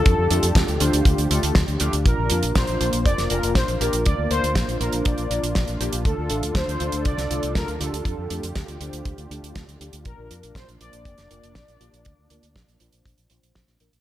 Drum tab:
HH |x-xxxxxxxxxxxxxx|x-xxxxxxxxxxxxxx|x-xxxxxxxxxxxxxx|x-xxxxxxxxxxxxxx|
SD |----o-------o---|----o----o--o---|----o-------o---|----o----o--o---|
BD |o---o---o---o---|o---o---o---o---|o---o---o---o---|o---o---o---o---|

HH |x-xxxxxxxxxxxxxx|x-xxxxxxxxxxxxxx|x-xxxxxxxxxxxxxx|
SD |----o-------o---|----o----o--o---|----o-------oo--|
BD |o---o---o---o---|o---o---o---o---|o---o---o---o---|